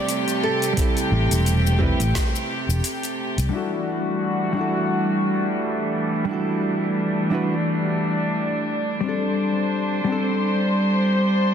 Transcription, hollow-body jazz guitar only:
0.00 0.72 G3 medium
0.00 0.73 C4 medium
0.00 0.74 E4 medium
0.00 0.76 A4 medium
0.73 1.75 G3 medium
0.73 1.76 C4 medium
0.78 1.78 E4 medium
0.78 1.79 A4 loud
1.79 2.01 G3 loud
1.79 2.01 C4 medium
1.79 2.02 E4 medium
1.79 2.03 B4 loud
3.49 4.51 G3 medium
3.49 4.52 D4 medium
3.53 4.53 E4 medium
3.53 4.54 F#4 medium
3.53 4.55 A4 medium
4.53 6.23 G3 medium
4.53 6.24 D4 medium
4.53 6.25 E4 medium
4.59 6.26 F#4 medium
4.59 6.27 A4 medium
6.25 7.27 G3 medium
6.25 7.28 D4 medium
6.29 7.29 E4 medium
6.29 7.30 F#4 medium
6.33 7.31 A4 medium
7.30 7.52 G3 medium
7.30 7.53 D4 medium
7.30 7.53 E4 medium
7.30 7.54 F#4 medium
7.34 7.54 B4 medium
9.01 10.03 G3 medium
9.01 10.04 C4 medium
9.06 10.05 D4 medium
9.06 10.07 A4 medium
10.04 11.54 G3 medium
10.04 11.54 C4 medium
10.10 11.54 D4 medium
10.10 11.54 A4 medium

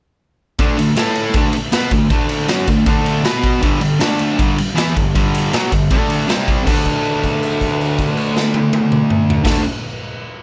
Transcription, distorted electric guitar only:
0.59 0.77 D3 medium
0.59 0.77 A3 medium
0.59 0.78 D4 loud
0.78 0.93 D3 medium
0.78 0.93 A3 medium
0.97 1.34 A3 medium
0.97 1.35 E4 loud
0.97 1.35 A4 loud
1.35 1.53 D3 medium
1.35 1.54 A3 loud
1.35 1.54 D4 loud
1.54 muted distorted electric guitar stroke medium
1.72 1.91 B3 medium
1.72 1.91 F#4 loud
1.72 1.92 B4 loud
1.92 2.07 D3 medium
1.92 2.07 A3 medium
2.11 2.48 D3 medium
2.11 2.48 A3 medium
2.11 2.49 D4 medium
2.48 2.67 F#3 loud
2.48 2.67 C#4 loud
2.48 2.68 F#4 loud
2.68 2.83 D3 medium
2.68 2.83 A3 medium
2.86 3.24 D3 loud
2.86 3.24 A3 medium
2.86 3.25 D4 loud
3.24 3.62 B3 loud
3.24 3.63 F#4 loud
3.24 3.63 B4 loud
3.62 3.80 G2 medium
3.62 3.81 D3 medium
3.62 3.81 G3 loud
3.81 3.97 G2 medium
3.81 3.97 D3 medium
4.00 4.38 D3 loud
4.00 4.39 A3 loud
4.00 4.39 D4 loud
4.37 4.55 G2 medium
4.37 4.58 D3 loud
4.37 4.58 G3 loud
4.57 muted distorted electric guitar stroke medium
4.75 4.95 E3 medium
4.75 4.95 B3 medium
4.75 4.96 E4 loud
4.95 5.11 G2 medium
4.95 5.12 D3 medium
5.14 5.53 G2 medium
5.14 5.51 D3 loud
5.14 5.52 G3 loud
5.52 5.71 B2 medium
5.52 5.72 F#3 loud
5.52 5.72 B3 loud
5.72 5.88 G2 medium
5.72 5.88 D3 medium
5.91 6.28 D3 medium
5.91 6.28 A3 medium
5.91 6.29 D4 loud
6.28 6.64 C3 medium
6.28 6.66 G3 loud
6.28 6.67 C4 loud
6.64 9.43 D3 medium
6.64 9.46 A3 loud
6.69 9.47 D4 loud
9.43 9.61 D3 loud
9.43 9.62 A3 loud
9.43 9.63 D4 loud

